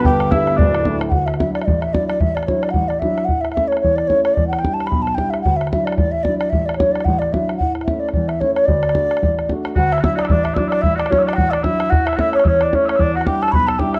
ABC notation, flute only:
X:1
M:4/4
L:1/16
Q:"Swing" 1/4=223
K:D
V:1 name="Flute"
g4 e4 d6 z3/2 g/2 | f2 e2 e2 d3/2 e/2 d2 e2 d2 d2 | e2 d2 c2 d2 f2 d2 e4 | f2 e2 e2 c2 c2 d2 c2 c2 |
d2 f2 g2 a2 b2 a2 g2 e2 | f2 e2 e2 d2 d2 e2 d2 d2 | e2 d2 c2 d2 f2 d2 e4 | f2 z2 e2 d2 d2 e2 c2 c2 |
d12- d2 z2 | f2 e2 e2 d2 d2 e2 d2 d2 | e2 d2 c2 d3/2 g/2 f2 d2 e4 | f2 e2 e2 c2 c2 d2 c2 c2 |
d2 f2 g2 a2 b2 a2 g2 e2 |]